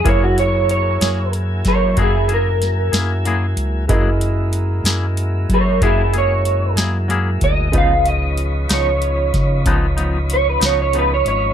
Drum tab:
HH |xxxxxxxxxxxx|xxxxxxxxxxxx|xxxxxxxxxxxx|
SD |---o-o--oo--|---o-----o--|---o-o---o--|
BD |o----oo-----|o----oo----o|o----oo-----|